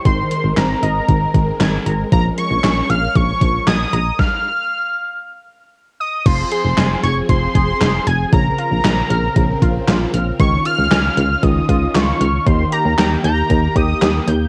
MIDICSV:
0, 0, Header, 1, 6, 480
1, 0, Start_track
1, 0, Key_signature, -4, "minor"
1, 0, Tempo, 517241
1, 48, Time_signature, 4, 2, 24, 8
1, 13440, End_track
2, 0, Start_track
2, 0, Title_t, "Analog synth lead"
2, 0, Program_c, 0, 81
2, 48, Note_on_c, 0, 84, 99
2, 271, Note_off_c, 0, 84, 0
2, 288, Note_on_c, 0, 84, 90
2, 512, Note_off_c, 0, 84, 0
2, 528, Note_on_c, 0, 82, 91
2, 1691, Note_off_c, 0, 82, 0
2, 1968, Note_on_c, 0, 82, 96
2, 2076, Note_off_c, 0, 82, 0
2, 2207, Note_on_c, 0, 85, 109
2, 2686, Note_on_c, 0, 89, 116
2, 2700, Note_off_c, 0, 85, 0
2, 2926, Note_on_c, 0, 85, 110
2, 2940, Note_off_c, 0, 89, 0
2, 3400, Note_off_c, 0, 85, 0
2, 3406, Note_on_c, 0, 87, 108
2, 3886, Note_on_c, 0, 89, 113
2, 3900, Note_off_c, 0, 87, 0
2, 5327, Note_off_c, 0, 89, 0
2, 5568, Note_on_c, 0, 87, 110
2, 5808, Note_on_c, 0, 84, 110
2, 5822, Note_off_c, 0, 87, 0
2, 6043, Note_off_c, 0, 84, 0
2, 6048, Note_on_c, 0, 84, 111
2, 6495, Note_off_c, 0, 84, 0
2, 6528, Note_on_c, 0, 85, 107
2, 6636, Note_off_c, 0, 85, 0
2, 6767, Note_on_c, 0, 84, 117
2, 7488, Note_on_c, 0, 80, 96
2, 7502, Note_off_c, 0, 84, 0
2, 7722, Note_off_c, 0, 80, 0
2, 7728, Note_on_c, 0, 82, 103
2, 9371, Note_off_c, 0, 82, 0
2, 9648, Note_on_c, 0, 85, 107
2, 9871, Note_off_c, 0, 85, 0
2, 9888, Note_on_c, 0, 89, 119
2, 10609, Note_on_c, 0, 87, 114
2, 10622, Note_off_c, 0, 89, 0
2, 11088, Note_on_c, 0, 85, 109
2, 11101, Note_off_c, 0, 87, 0
2, 11567, Note_on_c, 0, 84, 100
2, 11581, Note_off_c, 0, 85, 0
2, 11802, Note_off_c, 0, 84, 0
2, 11807, Note_on_c, 0, 82, 89
2, 12031, Note_off_c, 0, 82, 0
2, 12047, Note_on_c, 0, 82, 88
2, 12155, Note_off_c, 0, 82, 0
2, 12287, Note_on_c, 0, 82, 100
2, 12767, Note_on_c, 0, 87, 98
2, 12781, Note_off_c, 0, 82, 0
2, 13248, Note_off_c, 0, 87, 0
2, 13440, End_track
3, 0, Start_track
3, 0, Title_t, "Synth pluck"
3, 0, Program_c, 1, 84
3, 48, Note_on_c, 1, 51, 91
3, 217, Note_off_c, 1, 51, 0
3, 287, Note_on_c, 1, 51, 73
3, 456, Note_off_c, 1, 51, 0
3, 527, Note_on_c, 1, 60, 80
3, 696, Note_off_c, 1, 60, 0
3, 767, Note_on_c, 1, 75, 99
3, 936, Note_off_c, 1, 75, 0
3, 1008, Note_on_c, 1, 51, 76
3, 1177, Note_off_c, 1, 51, 0
3, 1248, Note_on_c, 1, 51, 75
3, 1416, Note_off_c, 1, 51, 0
3, 1488, Note_on_c, 1, 92, 106
3, 1657, Note_off_c, 1, 92, 0
3, 1728, Note_on_c, 1, 82, 89
3, 1897, Note_off_c, 1, 82, 0
3, 1968, Note_on_c, 1, 53, 90
3, 2137, Note_off_c, 1, 53, 0
3, 2208, Note_on_c, 1, 53, 74
3, 2376, Note_off_c, 1, 53, 0
3, 2448, Note_on_c, 1, 61, 83
3, 2616, Note_off_c, 1, 61, 0
3, 2688, Note_on_c, 1, 77, 104
3, 2857, Note_off_c, 1, 77, 0
3, 2928, Note_on_c, 1, 53, 75
3, 3097, Note_off_c, 1, 53, 0
3, 3168, Note_on_c, 1, 53, 74
3, 3336, Note_off_c, 1, 53, 0
3, 3408, Note_on_c, 1, 92, 106
3, 3576, Note_off_c, 1, 92, 0
3, 3648, Note_on_c, 1, 82, 87
3, 3816, Note_off_c, 1, 82, 0
3, 5808, Note_on_c, 1, 53, 96
3, 5977, Note_off_c, 1, 53, 0
3, 6048, Note_on_c, 1, 68, 84
3, 6217, Note_off_c, 1, 68, 0
3, 6289, Note_on_c, 1, 80, 92
3, 6457, Note_off_c, 1, 80, 0
3, 6528, Note_on_c, 1, 92, 107
3, 6697, Note_off_c, 1, 92, 0
3, 6768, Note_on_c, 1, 53, 76
3, 6937, Note_off_c, 1, 53, 0
3, 7008, Note_on_c, 1, 68, 81
3, 7177, Note_off_c, 1, 68, 0
3, 7248, Note_on_c, 1, 68, 98
3, 7417, Note_off_c, 1, 68, 0
3, 7488, Note_on_c, 1, 92, 95
3, 7657, Note_off_c, 1, 92, 0
3, 7728, Note_on_c, 1, 49, 93
3, 7897, Note_off_c, 1, 49, 0
3, 7968, Note_on_c, 1, 65, 82
3, 8136, Note_off_c, 1, 65, 0
3, 8208, Note_on_c, 1, 82, 94
3, 8376, Note_off_c, 1, 82, 0
3, 8448, Note_on_c, 1, 89, 110
3, 8616, Note_off_c, 1, 89, 0
3, 8688, Note_on_c, 1, 49, 75
3, 8856, Note_off_c, 1, 49, 0
3, 8928, Note_on_c, 1, 65, 81
3, 9097, Note_off_c, 1, 65, 0
3, 9168, Note_on_c, 1, 65, 100
3, 9337, Note_off_c, 1, 65, 0
3, 9408, Note_on_c, 1, 89, 91
3, 9577, Note_off_c, 1, 89, 0
3, 9648, Note_on_c, 1, 51, 95
3, 9817, Note_off_c, 1, 51, 0
3, 9888, Note_on_c, 1, 65, 85
3, 10056, Note_off_c, 1, 65, 0
3, 10128, Note_on_c, 1, 80, 90
3, 10297, Note_off_c, 1, 80, 0
3, 10368, Note_on_c, 1, 89, 109
3, 10537, Note_off_c, 1, 89, 0
3, 10607, Note_on_c, 1, 51, 78
3, 10776, Note_off_c, 1, 51, 0
3, 10848, Note_on_c, 1, 65, 81
3, 11016, Note_off_c, 1, 65, 0
3, 11088, Note_on_c, 1, 65, 101
3, 11257, Note_off_c, 1, 65, 0
3, 11328, Note_on_c, 1, 89, 94
3, 11497, Note_off_c, 1, 89, 0
3, 11568, Note_on_c, 1, 51, 91
3, 11737, Note_off_c, 1, 51, 0
3, 11808, Note_on_c, 1, 67, 84
3, 11976, Note_off_c, 1, 67, 0
3, 12048, Note_on_c, 1, 79, 88
3, 12217, Note_off_c, 1, 79, 0
3, 12288, Note_on_c, 1, 91, 109
3, 12457, Note_off_c, 1, 91, 0
3, 12529, Note_on_c, 1, 51, 72
3, 12697, Note_off_c, 1, 51, 0
3, 12768, Note_on_c, 1, 67, 80
3, 12937, Note_off_c, 1, 67, 0
3, 13008, Note_on_c, 1, 67, 102
3, 13177, Note_off_c, 1, 67, 0
3, 13249, Note_on_c, 1, 91, 92
3, 13417, Note_off_c, 1, 91, 0
3, 13440, End_track
4, 0, Start_track
4, 0, Title_t, "String machine"
4, 0, Program_c, 2, 50
4, 48, Note_on_c, 2, 56, 82
4, 48, Note_on_c, 2, 60, 72
4, 48, Note_on_c, 2, 70, 89
4, 1949, Note_off_c, 2, 60, 0
4, 1968, Note_on_c, 2, 61, 75
4, 3851, Note_off_c, 2, 56, 0
4, 3851, Note_off_c, 2, 70, 0
4, 3869, Note_off_c, 2, 61, 0
4, 5809, Note_on_c, 2, 53, 80
4, 5809, Note_on_c, 2, 60, 77
4, 5809, Note_on_c, 2, 68, 91
4, 7709, Note_off_c, 2, 53, 0
4, 7709, Note_off_c, 2, 68, 0
4, 7710, Note_off_c, 2, 60, 0
4, 7728, Note_on_c, 2, 70, 91
4, 7729, Note_on_c, 2, 49, 83
4, 7729, Note_on_c, 2, 60, 78
4, 9629, Note_off_c, 2, 49, 0
4, 9629, Note_off_c, 2, 60, 0
4, 9629, Note_off_c, 2, 70, 0
4, 9648, Note_on_c, 2, 61, 76
4, 9648, Note_on_c, 2, 65, 93
4, 9649, Note_on_c, 2, 51, 85
4, 11549, Note_off_c, 2, 61, 0
4, 11549, Note_off_c, 2, 65, 0
4, 11569, Note_on_c, 2, 58, 75
4, 11569, Note_on_c, 2, 67, 92
4, 13440, Note_off_c, 2, 51, 0
4, 13440, Note_off_c, 2, 58, 0
4, 13440, Note_off_c, 2, 67, 0
4, 13440, End_track
5, 0, Start_track
5, 0, Title_t, "FM bass"
5, 0, Program_c, 3, 39
5, 48, Note_on_c, 3, 32, 108
5, 216, Note_off_c, 3, 32, 0
5, 408, Note_on_c, 3, 32, 99
5, 492, Note_off_c, 3, 32, 0
5, 528, Note_on_c, 3, 32, 105
5, 696, Note_off_c, 3, 32, 0
5, 768, Note_on_c, 3, 32, 102
5, 936, Note_off_c, 3, 32, 0
5, 1008, Note_on_c, 3, 32, 102
5, 1176, Note_off_c, 3, 32, 0
5, 1247, Note_on_c, 3, 32, 99
5, 1415, Note_off_c, 3, 32, 0
5, 1488, Note_on_c, 3, 32, 108
5, 1656, Note_off_c, 3, 32, 0
5, 1728, Note_on_c, 3, 32, 97
5, 1896, Note_off_c, 3, 32, 0
5, 1968, Note_on_c, 3, 34, 111
5, 2136, Note_off_c, 3, 34, 0
5, 2328, Note_on_c, 3, 34, 98
5, 2412, Note_off_c, 3, 34, 0
5, 2449, Note_on_c, 3, 34, 100
5, 2617, Note_off_c, 3, 34, 0
5, 2689, Note_on_c, 3, 34, 105
5, 2857, Note_off_c, 3, 34, 0
5, 2928, Note_on_c, 3, 34, 112
5, 3096, Note_off_c, 3, 34, 0
5, 3168, Note_on_c, 3, 34, 96
5, 3336, Note_off_c, 3, 34, 0
5, 3408, Note_on_c, 3, 34, 104
5, 3576, Note_off_c, 3, 34, 0
5, 3648, Note_on_c, 3, 34, 99
5, 3816, Note_off_c, 3, 34, 0
5, 5808, Note_on_c, 3, 29, 107
5, 5976, Note_off_c, 3, 29, 0
5, 6168, Note_on_c, 3, 29, 101
5, 6252, Note_off_c, 3, 29, 0
5, 6288, Note_on_c, 3, 29, 102
5, 6456, Note_off_c, 3, 29, 0
5, 6529, Note_on_c, 3, 29, 102
5, 6697, Note_off_c, 3, 29, 0
5, 6768, Note_on_c, 3, 29, 110
5, 6936, Note_off_c, 3, 29, 0
5, 7008, Note_on_c, 3, 29, 96
5, 7176, Note_off_c, 3, 29, 0
5, 7248, Note_on_c, 3, 29, 100
5, 7416, Note_off_c, 3, 29, 0
5, 7488, Note_on_c, 3, 29, 107
5, 7656, Note_off_c, 3, 29, 0
5, 7728, Note_on_c, 3, 34, 112
5, 7896, Note_off_c, 3, 34, 0
5, 8088, Note_on_c, 3, 34, 96
5, 8172, Note_off_c, 3, 34, 0
5, 8208, Note_on_c, 3, 34, 102
5, 8376, Note_off_c, 3, 34, 0
5, 8448, Note_on_c, 3, 34, 104
5, 8616, Note_off_c, 3, 34, 0
5, 8687, Note_on_c, 3, 34, 107
5, 8856, Note_off_c, 3, 34, 0
5, 8927, Note_on_c, 3, 34, 94
5, 9096, Note_off_c, 3, 34, 0
5, 9168, Note_on_c, 3, 34, 110
5, 9336, Note_off_c, 3, 34, 0
5, 9408, Note_on_c, 3, 34, 97
5, 9576, Note_off_c, 3, 34, 0
5, 9648, Note_on_c, 3, 37, 110
5, 9816, Note_off_c, 3, 37, 0
5, 10008, Note_on_c, 3, 37, 92
5, 10092, Note_off_c, 3, 37, 0
5, 10128, Note_on_c, 3, 37, 106
5, 10296, Note_off_c, 3, 37, 0
5, 10368, Note_on_c, 3, 37, 111
5, 10536, Note_off_c, 3, 37, 0
5, 10608, Note_on_c, 3, 37, 107
5, 10776, Note_off_c, 3, 37, 0
5, 10848, Note_on_c, 3, 37, 107
5, 11016, Note_off_c, 3, 37, 0
5, 11088, Note_on_c, 3, 37, 98
5, 11256, Note_off_c, 3, 37, 0
5, 11328, Note_on_c, 3, 37, 100
5, 11496, Note_off_c, 3, 37, 0
5, 11569, Note_on_c, 3, 39, 113
5, 11736, Note_off_c, 3, 39, 0
5, 11929, Note_on_c, 3, 39, 104
5, 12013, Note_off_c, 3, 39, 0
5, 12048, Note_on_c, 3, 39, 106
5, 12216, Note_off_c, 3, 39, 0
5, 12288, Note_on_c, 3, 39, 104
5, 12456, Note_off_c, 3, 39, 0
5, 12527, Note_on_c, 3, 39, 107
5, 12696, Note_off_c, 3, 39, 0
5, 12767, Note_on_c, 3, 39, 104
5, 12935, Note_off_c, 3, 39, 0
5, 13009, Note_on_c, 3, 39, 109
5, 13176, Note_off_c, 3, 39, 0
5, 13248, Note_on_c, 3, 39, 105
5, 13416, Note_off_c, 3, 39, 0
5, 13440, End_track
6, 0, Start_track
6, 0, Title_t, "Drums"
6, 47, Note_on_c, 9, 42, 67
6, 48, Note_on_c, 9, 36, 121
6, 140, Note_off_c, 9, 42, 0
6, 141, Note_off_c, 9, 36, 0
6, 286, Note_on_c, 9, 42, 72
6, 379, Note_off_c, 9, 42, 0
6, 528, Note_on_c, 9, 38, 118
6, 528, Note_on_c, 9, 39, 98
6, 529, Note_on_c, 9, 42, 74
6, 621, Note_off_c, 9, 38, 0
6, 621, Note_off_c, 9, 39, 0
6, 622, Note_off_c, 9, 42, 0
6, 769, Note_on_c, 9, 42, 70
6, 862, Note_off_c, 9, 42, 0
6, 1007, Note_on_c, 9, 36, 91
6, 1007, Note_on_c, 9, 42, 64
6, 1100, Note_off_c, 9, 36, 0
6, 1100, Note_off_c, 9, 42, 0
6, 1247, Note_on_c, 9, 36, 90
6, 1248, Note_on_c, 9, 42, 72
6, 1340, Note_off_c, 9, 36, 0
6, 1341, Note_off_c, 9, 42, 0
6, 1489, Note_on_c, 9, 42, 84
6, 1490, Note_on_c, 9, 38, 113
6, 1490, Note_on_c, 9, 39, 92
6, 1582, Note_off_c, 9, 42, 0
6, 1583, Note_off_c, 9, 38, 0
6, 1583, Note_off_c, 9, 39, 0
6, 1729, Note_on_c, 9, 42, 79
6, 1822, Note_off_c, 9, 42, 0
6, 1968, Note_on_c, 9, 36, 120
6, 1968, Note_on_c, 9, 42, 70
6, 2061, Note_off_c, 9, 36, 0
6, 2061, Note_off_c, 9, 42, 0
6, 2207, Note_on_c, 9, 42, 74
6, 2299, Note_off_c, 9, 42, 0
6, 2450, Note_on_c, 9, 38, 119
6, 2450, Note_on_c, 9, 39, 98
6, 2450, Note_on_c, 9, 42, 75
6, 2543, Note_off_c, 9, 38, 0
6, 2543, Note_off_c, 9, 39, 0
6, 2543, Note_off_c, 9, 42, 0
6, 2690, Note_on_c, 9, 42, 68
6, 2783, Note_off_c, 9, 42, 0
6, 2928, Note_on_c, 9, 36, 90
6, 2928, Note_on_c, 9, 42, 67
6, 3021, Note_off_c, 9, 36, 0
6, 3021, Note_off_c, 9, 42, 0
6, 3168, Note_on_c, 9, 36, 89
6, 3169, Note_on_c, 9, 42, 76
6, 3260, Note_off_c, 9, 36, 0
6, 3262, Note_off_c, 9, 42, 0
6, 3410, Note_on_c, 9, 42, 81
6, 3411, Note_on_c, 9, 38, 112
6, 3411, Note_on_c, 9, 39, 97
6, 3503, Note_off_c, 9, 42, 0
6, 3504, Note_off_c, 9, 38, 0
6, 3504, Note_off_c, 9, 39, 0
6, 3649, Note_on_c, 9, 42, 81
6, 3742, Note_off_c, 9, 42, 0
6, 3888, Note_on_c, 9, 36, 111
6, 3888, Note_on_c, 9, 38, 93
6, 3981, Note_off_c, 9, 36, 0
6, 3981, Note_off_c, 9, 38, 0
6, 5809, Note_on_c, 9, 36, 121
6, 5809, Note_on_c, 9, 42, 69
6, 5809, Note_on_c, 9, 49, 108
6, 5901, Note_off_c, 9, 36, 0
6, 5901, Note_off_c, 9, 42, 0
6, 5901, Note_off_c, 9, 49, 0
6, 6047, Note_on_c, 9, 42, 75
6, 6139, Note_off_c, 9, 42, 0
6, 6289, Note_on_c, 9, 38, 122
6, 6289, Note_on_c, 9, 39, 101
6, 6290, Note_on_c, 9, 42, 75
6, 6382, Note_off_c, 9, 38, 0
6, 6382, Note_off_c, 9, 39, 0
6, 6382, Note_off_c, 9, 42, 0
6, 6530, Note_on_c, 9, 42, 72
6, 6622, Note_off_c, 9, 42, 0
6, 6767, Note_on_c, 9, 42, 70
6, 6768, Note_on_c, 9, 36, 93
6, 6860, Note_off_c, 9, 42, 0
6, 6861, Note_off_c, 9, 36, 0
6, 7008, Note_on_c, 9, 36, 92
6, 7009, Note_on_c, 9, 42, 73
6, 7100, Note_off_c, 9, 36, 0
6, 7102, Note_off_c, 9, 42, 0
6, 7250, Note_on_c, 9, 42, 84
6, 7251, Note_on_c, 9, 38, 116
6, 7251, Note_on_c, 9, 39, 95
6, 7343, Note_off_c, 9, 42, 0
6, 7344, Note_off_c, 9, 38, 0
6, 7344, Note_off_c, 9, 39, 0
6, 7489, Note_on_c, 9, 42, 80
6, 7582, Note_off_c, 9, 42, 0
6, 7728, Note_on_c, 9, 36, 121
6, 7728, Note_on_c, 9, 42, 71
6, 7821, Note_off_c, 9, 36, 0
6, 7821, Note_off_c, 9, 42, 0
6, 7966, Note_on_c, 9, 42, 76
6, 8059, Note_off_c, 9, 42, 0
6, 8209, Note_on_c, 9, 38, 120
6, 8209, Note_on_c, 9, 39, 100
6, 8209, Note_on_c, 9, 42, 76
6, 8302, Note_off_c, 9, 38, 0
6, 8302, Note_off_c, 9, 39, 0
6, 8302, Note_off_c, 9, 42, 0
6, 8449, Note_on_c, 9, 42, 72
6, 8542, Note_off_c, 9, 42, 0
6, 8686, Note_on_c, 9, 42, 67
6, 8687, Note_on_c, 9, 36, 92
6, 8779, Note_off_c, 9, 42, 0
6, 8780, Note_off_c, 9, 36, 0
6, 8927, Note_on_c, 9, 36, 90
6, 8929, Note_on_c, 9, 42, 75
6, 9020, Note_off_c, 9, 36, 0
6, 9022, Note_off_c, 9, 42, 0
6, 9170, Note_on_c, 9, 42, 87
6, 9171, Note_on_c, 9, 38, 117
6, 9171, Note_on_c, 9, 39, 93
6, 9262, Note_off_c, 9, 42, 0
6, 9263, Note_off_c, 9, 38, 0
6, 9263, Note_off_c, 9, 39, 0
6, 9409, Note_on_c, 9, 42, 81
6, 9501, Note_off_c, 9, 42, 0
6, 9648, Note_on_c, 9, 36, 127
6, 9648, Note_on_c, 9, 42, 70
6, 9741, Note_off_c, 9, 36, 0
6, 9741, Note_off_c, 9, 42, 0
6, 9887, Note_on_c, 9, 42, 73
6, 9980, Note_off_c, 9, 42, 0
6, 10129, Note_on_c, 9, 38, 120
6, 10129, Note_on_c, 9, 39, 103
6, 10130, Note_on_c, 9, 42, 73
6, 10222, Note_off_c, 9, 38, 0
6, 10222, Note_off_c, 9, 39, 0
6, 10222, Note_off_c, 9, 42, 0
6, 10369, Note_on_c, 9, 42, 73
6, 10462, Note_off_c, 9, 42, 0
6, 10607, Note_on_c, 9, 42, 68
6, 10608, Note_on_c, 9, 36, 95
6, 10700, Note_off_c, 9, 36, 0
6, 10700, Note_off_c, 9, 42, 0
6, 10847, Note_on_c, 9, 36, 93
6, 10849, Note_on_c, 9, 42, 74
6, 10940, Note_off_c, 9, 36, 0
6, 10942, Note_off_c, 9, 42, 0
6, 11090, Note_on_c, 9, 42, 85
6, 11091, Note_on_c, 9, 38, 112
6, 11091, Note_on_c, 9, 39, 96
6, 11183, Note_off_c, 9, 42, 0
6, 11184, Note_off_c, 9, 38, 0
6, 11184, Note_off_c, 9, 39, 0
6, 11329, Note_on_c, 9, 42, 82
6, 11422, Note_off_c, 9, 42, 0
6, 11568, Note_on_c, 9, 36, 127
6, 11568, Note_on_c, 9, 42, 69
6, 11661, Note_off_c, 9, 36, 0
6, 11661, Note_off_c, 9, 42, 0
6, 11807, Note_on_c, 9, 42, 73
6, 11900, Note_off_c, 9, 42, 0
6, 12050, Note_on_c, 9, 38, 117
6, 12050, Note_on_c, 9, 39, 107
6, 12050, Note_on_c, 9, 42, 73
6, 12142, Note_off_c, 9, 38, 0
6, 12142, Note_off_c, 9, 39, 0
6, 12143, Note_off_c, 9, 42, 0
6, 12289, Note_on_c, 9, 42, 75
6, 12382, Note_off_c, 9, 42, 0
6, 12527, Note_on_c, 9, 36, 89
6, 12527, Note_on_c, 9, 42, 68
6, 12620, Note_off_c, 9, 36, 0
6, 12620, Note_off_c, 9, 42, 0
6, 12767, Note_on_c, 9, 36, 90
6, 12768, Note_on_c, 9, 42, 76
6, 12860, Note_off_c, 9, 36, 0
6, 12861, Note_off_c, 9, 42, 0
6, 13009, Note_on_c, 9, 42, 83
6, 13010, Note_on_c, 9, 38, 116
6, 13010, Note_on_c, 9, 39, 96
6, 13102, Note_off_c, 9, 42, 0
6, 13103, Note_off_c, 9, 38, 0
6, 13103, Note_off_c, 9, 39, 0
6, 13249, Note_on_c, 9, 42, 80
6, 13342, Note_off_c, 9, 42, 0
6, 13440, End_track
0, 0, End_of_file